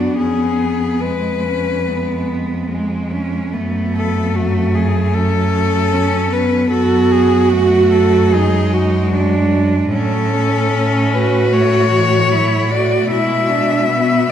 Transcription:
cello
Already playing: F#2 B3 D4 F#4
0.17 F2 C#4 G#4
0.62 B3
1.01 G#3 B4
1.45 C#4
1.86 G#3 B3
2.70 G#3
3.12 C#4
3.53 F#2 A3 B3
3.96 A4
4.35 A3 F#4
4.75 G#4
5.14 C#4 A4
5.93 C#4
6.32 B3 B4
6.71 F#2 F#4 A4
7.11 G#4
7.51 A3 F#4
7.92 A4
8.32 G#3 D#4 G#4
8.73 F#4
9.13 D4
9.92 A2 F#3 C#4 A4
10.33 C#4
10.73 C#4
11.13 F#4 B4
11.52 A3 C#5
11.92 E3
12.31 F#3 E4
12.70 A3 F#4 D5
13.10 B2 G#3 E4 E5
13.49 D4
13.89 B3

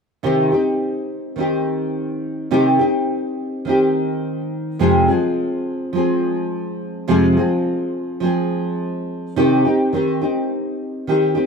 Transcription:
nylon-string guitar
0.23 C3 D#3 C4 D#4 G4
0.52 C4 D#4 G4
1.36 D#3 C4 D#4
1.40 G4
2.51 C3 D#3 C4 D#4 G4
2.79 C4 D#4 G4
3.65 D#3 C4 D#4
3.69 G4
4.79 F2 C3 F3 G#3 C4 G#4
5.08 F3 G#3 C4 G#4
5.93 F3 G#3 C4
5.97 G#4
7.08 F2 C3 F3 G#3 C4 G#4
7.37 F3 G#3 C4 G#4
8.20 F3 G#3 C4
8.25 G#4
9.36 C3 D#3 C4 D#4 G4
9.65 C4 D#4 G4
9.93 D#3 C4 D#4 G4
10.22 C4 D#4 G4
11.07 D#3 C4 D#4 G4
11.35 C4 D#4 G4

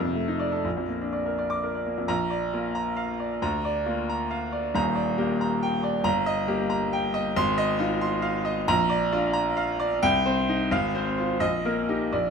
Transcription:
grand piano
Already playing: F2
0.05 C3
0.15 A3
0.28 D#4
0.40 D5
0.52 A4
0.65 A#1
0.77 F2
0.89 A#3
1.01 D4
1.12 D5
1.26 A#4
1.38 D5
1.50 D6
1.64 A#4
1.75 D5
1.86 A#3
1.98 F2
2.08 A#1 A#5
2.30 D5
2.53 A#3 F4
2.75 A#5
2.97 F5
3.20 D5
3.42 D2 A#5
3.65 D5
3.86 A#3 F4
4.09 A#5
4.31 F5
4.52 D5
4.75 D#1 D#2 A#5
4.95 D5
5.18 A#3 G4
5.41 A#5
5.63 G5
5.83 D5
6.04 G1 A#5
6.26 D#5
6.48 A#3 G4
6.70 A#5
6.93 G5
7.14 D#5
7.36 G#1 C6
7.58 D#5
7.79 D#4 F4
8.01 C6
8.22 F5
8.45 D#5
8.68 A#1 A#5
8.90 D5
9.12 D4 F4
9.33 A#5
9.57 F5
9.80 D5
10.03 C2 G5
10.26 C4 C5
10.49 D#4
10.71 G#1 F5
10.95 C4 C5
11.18 F4
11.40 A#1 D#5
11.65 A#3 A#4
11.89 D#4 G4
12.12 A#1 D5

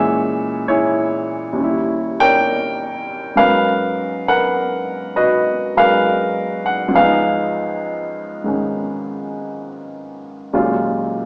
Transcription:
upright piano
Already playing: A#2 E3 G#3 C#4 G#4 C#5 E5
0.68 E4 G#4 C#5
1.53 D#2 C#3
1.61 G3 E4
2.20 A#4 C#5 G5
3.36 G#2 F#3 B3 C#4 A#4 B4 F5
4.28 A#4 B4 F#5
5.16 F#4 B4 D#5
5.75 F#3 G#3 A#4 B4 F5
6.66 F#5
6.88 C#2 G#2
6.94 F3 B3 G#4 B4 F5
7.00 D#4
8.44 G#2 D#3 G#3 C#4
10.53 D#2 A#2 F#3 G#3 C#4 F4

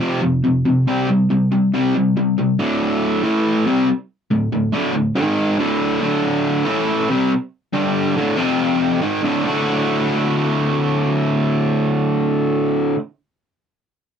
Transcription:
overdriven electric guitar
0.00 F2 C3 F3
0.22 F2 C3
0.44 F2 C3
0.65 F2 C3
0.87 C3 G3 C4
1.08 C3 G3
1.30 C3 G3
1.52 C3 G3
1.74 C3 G3 C4
1.95 C3 G3
2.17 C3 G3
2.38 C3 G3
2.59 D2 A2 D3
3.23 A2 E3 A3
3.66 C3 G3 C4
4.31 D2 A2
4.53 D2 A2
4.73 D2 A2 D3
4.94 D2 A2
5.15 G#2 D#3 G#3
5.58 D2 A2 D3
6.01 D2 A2 D3
6.65 A2 E3 A3
7.09 C3 G3 C4
7.73 G2 D3 G3
8.16 D2 A2 D3
8.36 F2 C3 F3
9.01 G#2 D#3 G#3
9.23 D2 A2 D3
9.44 D2 A2 D3 A3 F#4

